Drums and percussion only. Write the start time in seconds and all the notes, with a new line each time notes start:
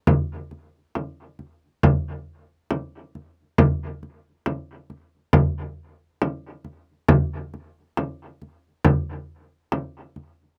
0.07 frame drum
0.51 frame drum
0.95 frame drum
1.39 frame drum
1.83 frame drum
2.71 frame drum
3.15 frame drum
3.58 frame drum
4.03 frame drum
4.46 frame drum
4.90 frame drum
5.33 frame drum
6.22 frame drum
6.65 frame drum
7.08 frame drum
7.54 frame drum
7.97 frame drum
8.42 frame drum
8.85 frame drum
9.72 frame drum
10.16 frame drum